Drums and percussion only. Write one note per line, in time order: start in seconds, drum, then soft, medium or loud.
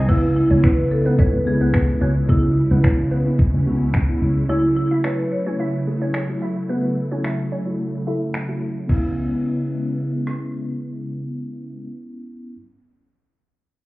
0.09 kick medium
0.09 crash medium
0.64 finger snap loud
0.64 kick loud
1.19 kick loud
1.74 finger snap loud
1.74 kick loud
2.29 kick medium
2.84 finger snap loud
2.84 kick loud
3.39 kick loud
3.94 finger snap loud
3.94 kick loud
5.04 finger snap loud
6.14 finger snap loud
7.24 finger snap loud
8.34 finger snap loud
8.89 kick medium
8.89 crash medium
10.27 cross-stick medium